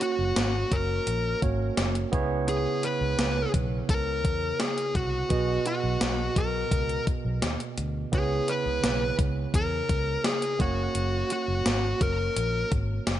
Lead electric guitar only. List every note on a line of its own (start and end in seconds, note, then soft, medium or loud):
0.02 0.74 F#4 medium
0.73 1.39 A#4 medium
2.49 2.85 G#4 medium
2.84 3.51 B4 loud
3.90 4.62 A#4 loud
4.61 4.96 G#4 medium
4.96 5.66 F#4 medium
5.67 6.39 F#4 medium
6.38 7.04 A#4 medium
8.14 8.50 G#4 medium
8.49 9.15 B4 loud
9.55 10.21 A#4 loud
10.26 10.61 G#4 medium
10.61 11.31 F#4 medium
11.32 12.02 F#4 medium
12.03 12.68 A#4 medium